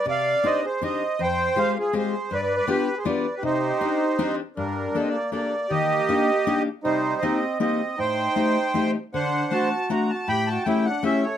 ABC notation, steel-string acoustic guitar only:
X:1
M:3/4
L:1/8
Q:"Swing" 1/4=158
K:Cm
V:1 name="Steel-string acoustic guitar"
C,2 [CDEG] z [CDEG] z | F,,2 [A,CFG] z [A,CFG] z | G,,2 [=B,DFG] z [B,DFG] z | C,2 [CDEG] z [CDEG] z |
[K:Gm] G,,2 [B,DGA] z [B,DGA] z | E,2 [B,DEG] z [B,DEG] z | C,2 [B,CEG] z [B,CEG] z | A,,2 [A,CEG] z [A,CEG] z |
D,2 [A,CD^F] z [A,CDF] z | A,,2 [A,^C=EG] z [A,CEG] z |]